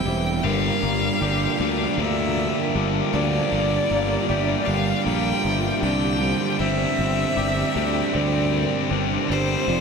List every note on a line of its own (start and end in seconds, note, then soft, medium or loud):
0.00 0.41 G3 medium
0.00 0.40 C4 medium
0.00 0.44 C4 medium
0.00 0.44 E4 medium
0.00 0.45 G5 loud
0.05 0.42 E1 medium
0.05 0.41 E3 medium
0.05 0.42 G3 medium
0.05 0.42 C4 loud
0.05 0.42 E4 medium
0.05 0.44 E5 medium
0.43 0.69 G1 loud
0.43 1.20 G2 medium
0.43 1.20 D3 medium
0.43 1.21 G3 medium
0.43 1.21 A#3 loud
0.43 9.65 D4 medium
0.43 1.22 D4 loud
0.43 6.56 F4 medium
0.43 9.65 G4 medium
0.43 6.56 A#4 medium
0.43 1.21 A#4 medium
0.43 2.01 F5 loud
0.83 1.08 G1 medium
0.83 1.98 A#3 medium
1.21 1.46 G1 medium
1.21 1.59 G2 medium
1.21 1.58 D3 medium
1.21 1.60 G3 medium
1.21 1.60 A#3 medium
1.21 1.60 D4 loud
1.21 3.16 G4 medium
1.21 1.58 D5 medium
1.59 1.84 D2 medium
1.59 1.97 G2 medium
1.59 1.97 D3 medium
1.59 1.98 G3 loud
1.59 1.98 A#3 medium
1.59 1.99 D4 medium
1.59 2.37 D5 medium
1.97 2.47 D2 medium
1.97 2.74 G2 loud
1.97 2.74 D3 medium
1.97 2.75 G3 loud
1.97 2.75 A#3 loud
1.97 2.76 D4 loud
1.97 2.76 E5 loud
2.37 3.12 F3 medium
2.37 3.13 A#4 medium
2.75 3.00 G1 medium
2.75 3.12 G2 medium
2.75 3.12 D3 medium
2.75 3.13 G3 medium
2.75 3.12 A#3 medium
2.75 3.13 D4 loud
3.13 3.38 D2 medium
3.13 3.50 G2 medium
3.13 3.50 D3 medium
3.13 5.06 F3 medium
3.13 3.51 G3 medium
3.13 3.50 A#3 medium
3.13 3.52 D4 medium
3.13 3.52 C5 medium
3.13 4.67 D5 loud
3.51 3.77 G1 loud
3.51 4.27 G2 loud
3.51 4.27 D3 medium
3.51 4.28 G3 loud
3.51 4.28 A#3 loud
3.51 4.29 D4 loud
3.51 3.89 D5 loud
3.90 4.15 G1 medium
3.90 5.04 A#3 medium
3.90 4.29 D5 medium
4.28 4.54 G1 loud
4.28 4.66 G2 medium
4.28 4.65 D3 medium
4.28 4.66 G3 medium
4.28 4.66 A#3 medium
4.28 4.67 D4 loud
4.28 6.22 G4 medium
4.28 4.67 E5 medium
4.65 4.92 G1 medium
4.65 5.04 G2 medium
4.65 5.04 D3 medium
4.65 5.05 G3 loud
4.65 5.05 A#3 loud
4.65 5.05 D4 medium
4.65 5.05 F5 loud
4.65 5.44 F5 medium
5.05 5.31 A#1 loud
5.05 5.81 G2 loud
5.05 5.81 D3 medium
5.05 5.82 G3 loud
5.05 5.82 A#3 loud
5.05 5.82 D4 loud
5.05 5.79 G5 loud
5.44 5.69 G1 medium
5.44 6.20 F3 medium
5.44 5.83 E5 medium
5.82 6.32 C2 loud
5.82 6.20 G2 medium
5.82 6.20 D3 medium
5.82 6.21 G3 medium
5.82 6.21 A#3 loud
5.82 6.21 D4 loud
5.82 6.21 D5 loud
5.82 6.61 G5 loud
6.21 6.57 G2 medium
6.21 6.58 D3 medium
6.21 6.60 F3 medium
6.21 6.58 G3 medium
6.21 6.58 A#3 medium
6.21 6.58 D4 medium
6.21 6.59 C5 medium
6.59 6.85 G1 loud
6.59 7.35 G2 loud
6.59 7.36 C3 loud
6.59 7.35 D3 loud
6.59 7.35 G3 loud
6.59 7.37 C4 loud
6.59 7.36 D4 loud
6.59 7.37 C5 loud
6.59 9.80 C5 medium
6.59 8.16 E5 loud
6.59 9.65 G5 medium
6.98 7.23 G1 loud
6.98 8.12 C4 medium
7.36 7.62 G1 loud
7.36 7.74 G2 medium
7.36 7.74 C3 medium
7.36 7.74 D3 medium
7.36 7.75 G3 medium
7.36 7.76 C4 loud
7.36 7.75 D4 loud
7.36 9.30 G4 medium
7.36 7.74 D5 medium
7.75 8.00 D2 medium
7.75 8.12 G2 medium
7.75 8.12 C3 medium
7.75 8.12 D3 loud
7.75 8.13 G3 loud
7.75 8.13 C4 medium
7.75 8.13 D4 loud
7.75 8.52 D5 medium
8.13 8.64 D2 loud
8.13 8.90 G2 medium
8.13 8.89 C3 loud
8.13 8.90 D3 loud
8.13 8.91 G3 loud
8.13 8.91 C4 loud
8.13 8.91 D4 loud
8.13 8.91 D5 loud
8.52 9.28 G3 medium
8.52 9.30 A#4 medium
8.91 9.16 G1 medium
8.91 9.28 G2 medium
8.91 9.28 C3 loud
8.91 9.29 D3 loud
8.91 9.29 G3 medium
8.91 9.29 C4 medium
8.91 9.30 D4 medium
9.29 9.54 G1 medium
9.29 9.66 G2 medium
9.29 9.66 C3 medium
9.29 9.66 D3 medium
9.29 9.66 G3 medium
9.29 9.66 C4 medium
9.29 9.67 D4 medium
9.29 9.68 C5 medium
9.29 9.80 C5 loud
9.67 9.80 F1 loud
9.67 9.80 F2 medium
9.67 9.80 C3 loud
9.67 9.80 F3 loud
9.67 9.80 A3 loud
9.67 9.80 C4 loud
9.67 9.80 F4 medium
9.67 9.80 A4 medium
9.67 9.80 D5 loud
9.67 9.80 A5 loud